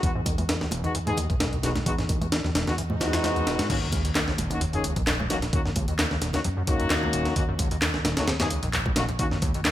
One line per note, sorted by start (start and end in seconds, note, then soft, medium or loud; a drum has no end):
0.03 1.26 E2 medium
0.03 0.07 E2 loud
0.03 0.10 G#3 medium
0.03 0.10 B3 medium
0.03 0.10 D#4 medium
0.03 0.10 F#4 medium
0.03 kick loud
0.03 closed hi-hat medium
0.03 closed hi-hat soft
0.15 0.21 G#2 medium
0.26 0.36 D#2 medium
0.26 kick medium
0.26 closed hi-hat medium
0.26 muted conga medium
0.38 0.44 E2 medium
0.38 closed hi-hat soft
0.38 high conga medium
0.49 0.56 E2 medium
0.49 snare loud
0.49 closed hi-hat medium
0.49 closed hi-hat soft
0.61 0.67 D#2 medium
0.61 snare medium
0.71 0.82 E1 loud
0.71 closed hi-hat medium
0.71 muted conga medium
0.84 0.88 D#2 medium
0.84 0.93 G#3 medium
0.84 0.93 B3 medium
0.84 0.93 D#4 medium
0.84 0.93 F#4 medium
0.84 closed hi-hat soft
0.84 low conga medium
0.95 0.99 E2 loud
0.95 closed hi-hat medium
0.95 closed hi-hat soft
1.07 1.13 G#2 medium
1.07 1.16 G#3 medium
1.07 1.16 B3 medium
1.07 1.16 D#4 medium
1.07 1.16 G#4 loud
1.07 closed hi-hat soft
1.07 high conga medium
1.17 1.28 D#2 medium
1.17 closed hi-hat medium
1.17 low conga medium
1.30 1.83 B1 medium
1.30 1.36 E2 medium
1.30 kick medium
1.30 closed hi-hat soft
1.40 1.47 E2 medium
1.40 snare loud
1.40 closed hi-hat medium
1.40 closed hi-hat soft
1.40 high conga medium
1.52 1.59 D#2 medium
1.52 closed hi-hat soft
1.63 1.73 E1 medium
1.63 1.70 G#3 medium
1.63 1.70 B3 medium
1.63 1.70 D#4 medium
1.63 1.70 F#4 medium
1.63 snare medium
1.63 closed hi-hat medium
1.75 1.79 D#2 medium
1.75 snare soft
1.75 closed hi-hat soft
1.75 high conga medium
1.86 1.90 E2 loud
1.86 2.40 E2 loud
1.86 1.93 G#3 medium
1.86 1.93 B3 medium
1.86 1.93 D#4 medium
1.86 1.93 F#4 medium
1.86 kick loud
1.86 closed hi-hat medium
1.86 closed hi-hat soft
1.98 2.04 G#2 medium
1.98 snare soft
1.98 closed hi-hat soft
2.09 2.19 D#2 medium
2.09 kick loud
2.09 closed hi-hat medium
2.09 muted conga medium
2.21 2.27 E2 medium
2.21 closed hi-hat soft
2.21 high conga medium
2.32 2.39 E2 medium
2.32 snare loud
2.32 closed hi-hat soft
2.32 closed hi-hat medium
2.44 2.50 D#2 medium
2.44 3.55 E2 medium
2.44 snare soft
2.55 2.65 E1 loud
2.55 snare loud
2.55 closed hi-hat medium
2.55 high conga medium
2.67 2.71 D#2 medium
2.67 2.73 G#3 medium
2.67 2.73 B3 medium
2.67 2.73 D#4 medium
2.67 2.73 F#4 medium
2.67 snare medium
2.67 closed hi-hat soft
2.67 low conga medium
2.78 2.82 E2 loud
2.78 closed hi-hat soft
2.78 closed hi-hat medium
2.78 swell medium
2.90 2.96 G#2 medium
2.90 high conga medium
3.00 3.11 D#2 medium
3.00 3.67 G#3 medium
3.00 3.67 B3 medium
3.00 3.67 D#4 medium
3.00 3.67 F#4 loud
3.00 snare loud
3.00 closed hi-hat medium
3.00 low conga medium
3.13 3.19 E2 medium
3.13 snare loud
3.13 closed hi-hat medium
3.13 closed hi-hat soft
3.24 3.31 E2 medium
3.24 snare loud
3.24 closed hi-hat soft
3.24 closed hi-hat medium
3.24 high conga medium
3.36 3.42 D#2 medium
3.36 closed hi-hat soft
3.47 3.57 E1 loud
3.47 snare loud
3.47 closed hi-hat medium
3.59 3.62 D#2 medium
3.59 3.68 G#2 medium
3.59 snare loud
3.59 closed hi-hat soft
3.59 closed hi-hat medium
3.59 high conga medium
3.70 3.74 D#2 loud
3.70 4.92 D#2 medium
3.70 3.76 A#3 medium
3.70 3.76 C#4 medium
3.70 3.76 D#4 medium
3.70 3.76 F#4 medium
3.70 kick loud
3.70 closed hi-hat soft
3.70 closed hi-hat medium
3.70 crash medium
3.70 sub drop medium
3.82 3.88 F#2 medium
3.92 4.03 C#2 medium
3.92 kick loud
3.92 closed hi-hat medium
3.92 muted conga medium
4.05 4.11 D#2 medium
4.05 closed hi-hat soft
4.15 4.22 D#2 medium
4.15 snare loud
4.15 clap loud
4.15 closed hi-hat medium
4.15 closed hi-hat soft
4.28 4.34 C#2 medium
4.28 snare medium
4.38 4.48 D#1 loud
4.38 closed hi-hat medium
4.38 muted conga medium
4.38 high conga medium
4.50 4.54 C#2 medium
4.50 4.60 A#3 medium
4.50 4.60 C#4 medium
4.50 4.60 D#4 medium
4.50 4.60 F#4 medium
4.50 closed hi-hat soft
4.50 low conga medium
4.61 4.65 D#2 loud
4.61 closed hi-hat medium
4.61 closed hi-hat soft
4.73 4.79 F#2 medium
4.73 4.83 A#3 medium
4.73 4.83 C#4 medium
4.73 4.83 D#4 medium
4.73 4.83 G#4 medium
4.73 closed hi-hat soft
4.84 4.94 C#2 medium
4.84 closed hi-hat medium
4.96 5.49 A#1 medium
4.96 5.02 D#2 medium
4.96 kick loud
4.96 closed hi-hat soft
5.07 5.14 D#2 medium
5.07 snare loud
5.07 clap loud
5.07 closed hi-hat medium
5.07 closed hi-hat soft
5.19 5.25 C#2 medium
5.19 muted conga soft
5.19 high conga medium
5.30 5.40 D#1 loud
5.30 5.37 A#3 medium
5.30 5.37 C#4 medium
5.30 5.37 D#4 medium
5.30 5.37 F#4 loud
5.30 snare medium
5.30 closed hi-hat medium
5.30 muted conga medium
5.42 5.46 C#2 medium
5.42 snare soft
5.42 closed hi-hat soft
5.53 6.07 D#2 loud
5.53 5.57 D#2 loud
5.53 5.60 A#3 medium
5.53 5.60 C#4 medium
5.53 5.60 D#4 medium
5.53 5.60 F#4 medium
5.53 kick loud
5.53 closed hi-hat medium
5.53 closed hi-hat soft
5.65 5.71 F#2 medium
5.65 snare soft
5.76 5.86 C#2 medium
5.76 kick medium
5.76 closed hi-hat medium
5.76 muted conga medium
5.88 5.94 D#2 medium
5.88 closed hi-hat soft
5.99 6.06 D#2 medium
5.99 snare loud
5.99 clap loud
5.99 closed hi-hat soft
5.99 closed hi-hat medium
6.11 6.17 C#2 medium
6.11 6.44 D#2 medium
6.11 snare soft
6.21 6.32 D#1 loud
6.21 snare soft
6.21 closed hi-hat medium
6.21 muted conga medium
6.21 high conga medium
6.33 6.38 C#2 medium
6.33 6.40 A#3 medium
6.33 6.40 C#4 medium
6.33 6.40 D#4 medium
6.33 6.40 F#4 medium
6.33 snare medium
6.33 closed hi-hat soft
6.33 low conga medium
6.44 6.49 D#2 loud
6.44 6.87 F#2 medium
6.44 closed hi-hat medium
6.44 closed hi-hat soft
6.57 6.63 F#2 medium
6.67 6.78 C#2 medium
6.67 7.34 A#3 medium
6.67 7.34 C#4 medium
6.67 7.34 D#4 medium
6.67 7.34 F#4 loud
6.67 kick loud
6.67 closed hi-hat medium
6.80 6.86 D#2 medium
6.80 closed hi-hat soft
6.90 7.33 D#2 loud
6.90 6.97 D#2 medium
6.90 snare loud
6.90 clap loud
6.90 closed hi-hat medium
6.90 closed hi-hat soft
7.03 7.09 C#2 medium
7.03 high conga medium
7.13 7.23 D#1 loud
7.13 closed hi-hat medium
7.25 7.29 C#2 medium
7.25 snare soft
7.25 closed hi-hat soft
7.36 8.59 D#2 loud
7.36 7.40 D#2 loud
7.36 7.43 A#3 medium
7.36 7.43 C#4 medium
7.36 7.43 D#4 medium
7.36 7.43 F#4 medium
7.36 kick loud
7.36 closed hi-hat medium
7.36 closed hi-hat soft
7.49 7.54 F#2 medium
7.59 7.69 C#2 medium
7.59 kick loud
7.59 closed hi-hat medium
7.59 muted conga medium
7.71 7.77 D#2 medium
7.71 closed hi-hat soft
7.82 7.89 D#2 medium
7.82 snare loud
7.82 clap loud
7.82 closed hi-hat medium
7.82 closed hi-hat soft
7.94 8.00 C#2 medium
7.94 snare medium
8.05 8.15 D#1 loud
8.05 snare loud
8.05 closed hi-hat medium
8.05 muted conga medium
8.05 high conga medium
8.17 8.21 C#2 medium
8.17 8.26 A#3 medium
8.17 8.26 C#4 medium
8.17 8.26 D#4 medium
8.17 8.26 F#4 medium
8.17 snare loud
8.17 closed hi-hat medium
8.17 closed hi-hat soft
8.17 low conga medium
8.28 8.32 D#2 loud
8.28 snare loud
8.28 closed hi-hat medium
8.28 closed hi-hat soft
8.40 8.46 F#2 medium
8.40 8.49 A#3 medium
8.40 8.49 C#4 medium
8.40 8.49 D#4 medium
8.40 8.49 G#4 medium
8.40 snare loud
8.40 closed hi-hat medium
8.50 8.61 C#2 medium
8.50 closed hi-hat medium
8.63 9.16 A#1 medium
8.63 8.69 D#2 medium
8.63 closed hi-hat soft
8.73 8.80 D#2 medium
8.73 clap loud
8.73 closed hi-hat medium
8.73 closed hi-hat soft
8.86 8.92 C#2 medium
8.86 kick medium
8.86 muted conga soft
8.86 high conga medium
8.96 9.07 D#1 loud
8.96 9.03 A#3 medium
8.96 9.03 C#4 medium
8.96 9.03 D#4 medium
8.96 9.03 F#4 loud
8.96 snare loud
8.96 closed hi-hat medium
8.96 muted conga medium
9.09 9.12 C#2 medium
9.09 closed hi-hat soft
9.19 9.71 D#2 loud
9.19 9.23 D#2 loud
9.19 9.26 A#3 medium
9.19 9.26 C#4 medium
9.19 9.26 D#4 medium
9.19 9.26 F#4 medium
9.19 kick loud
9.19 closed hi-hat medium
9.19 closed hi-hat soft
9.31 9.38 F#2 medium
9.31 snare soft
9.42 9.52 C#2 medium
9.42 kick loud
9.42 closed hi-hat medium
9.42 muted conga medium
9.54 9.61 D#2 medium
9.54 closed hi-hat soft
9.65 9.71 D#2 medium
9.65 snare loud
9.65 clap loud
9.65 closed hi-hat medium
9.65 closed hi-hat soft